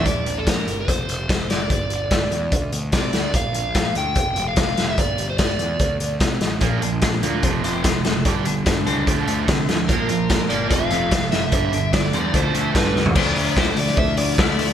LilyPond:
<<
  \new Staff \with { instrumentName = "Overdriven electric guitar" } { \time 4/4 \key g \mixolydian \tempo 4 = 146 d''8. a'16 bes'8. c''4.~ c''16 d''8~ | d''2~ d''8 r8 d''4 | f''4. g''4~ g''16 f''4 e''16 | d''8. c''16 d''2~ d''8 r8 |
r1 | r1 | bes'4. d''8 f''4. e''8~ | e''4 d''4 c''4 b'8. r16 |
d''4 c''8 d''8 e''8 d''4. | }
  \new Staff \with { instrumentName = "Clean electric guitar" } { \clef bass \time 4/4 \key g \mixolydian r1 | r1 | r1 | r1 |
bes,8 f8 f8 d'8 f8 c'8 f8 a8 | g,8 d8 d8 c'8 d8 a8 d8 f8 | bes,8 f8 bes,8 bes8 f,8 a8 c8 f8 | g,8 d8 d8 c'8 d8 a8 g,8 g8 |
<d f a e'>8 <f a e'>8 <d f a e'>8 <f a e'>4. <d f a e'>8 <f a e'>8 | }
  \new Staff \with { instrumentName = "Distorted electric guitar" } { \clef bass \time 4/4 \key g \mixolydian r1 | r1 | r1 | r1 |
<bes, f bes>8 <bes, f>8 <bes, f>8 <bes, f bes>8 <f, c f>8 <f, c f>8 <f, c>8 <f, c>8 | <g, d g>8 <g, d>8 <g, d>8 <g, d g>8 <d f a>8 <d f a>8 <d f>8 <d f>8 | <bes, f bes>8 <bes, f>8 <bes, f>8 <bes, f bes>8 <f, c f>8 <f, c f>8 <f, c>8 <f, c>8 | <g, d g>8 <g, d>8 <g, d>8 <g, d g>8 <d f a>8 <d f a>8 <g, d g>8 <g, d>8 |
r1 | }
  \new Staff \with { instrumentName = "Picked electric bass" } { \clef bass \time 4/4 \key g \mixolydian bes,,8 bes,,8 bes,,8 g,,8 f,,8 f,,8 f,,8 fis,,8 | g,,8 g,,8 g,,8 e,8 d,8 d,8 c8 d,8 | bes,,8 bes,,8 bes,,8 d,8 f,,8 f,,8 f,,8 f,,8 | g,,8 g,,8 g,,8 e,8 d,8 d,8 c8 a,,8 |
bes,,8 bes,,8 bes,,8 d,8 f,,8 f,,8 f,,8 fis,,8 | g,,8 g,,8 g,,8 des,8 d,8 d,8 c8 d,8 | bes,,8 bes,,8 bes,,8 g,,8 f,,8 f,,8 f,,8 fis,,8 | g,,8 g,,8 g,,8 e,8 d,8 d,8 g,,8 c,8 |
d,8 d,8 d,8 d,8 d,8 d,8 d,8 d,8 | }
  \new DrumStaff \with { instrumentName = "Drums" } \drummode { \time 4/4 <hh bd>8 hh8 <hh bd sn>8 hh8 <hh bd>8 hh8 <hh bd sn>8 <hh sn>8 | <hh bd>8 hh8 <hh bd sn>8 hh8 <hh bd>8 hh8 <hh bd sn>8 <hh sn>8 | <hh bd>8 hh8 <hh bd sn>8 hh8 <hh bd>8 hh8 <hh bd sn>8 <hh sn>8 | <hh bd>8 hh8 <hh bd sn>8 hh8 <hh bd>8 hh8 <hh bd sn>8 <hh sn>8 |
<hh bd>8 hh8 <hh bd sn>8 hh8 <hh bd>8 hh8 <hh bd sn>8 <hh sn>8 | <hh bd>8 hh8 <hh bd sn>8 hh8 <hh bd>8 hh8 <hh bd sn>8 <hh sn>8 | <hh bd>8 hh8 <hh bd sn>8 hh8 <hh bd>8 hh8 <hh bd sn>8 <hh sn>8 | <hh bd>8 hh8 <hh bd sn>8 hh8 <hh bd>8 hh8 <hh bd sn>8 sn16 tomfh16 |
<cymc bd>8 hho8 <bd sn>8 hho16 sn16 bd8 hho8 <bd sn>16 sn16 hho8 | }
>>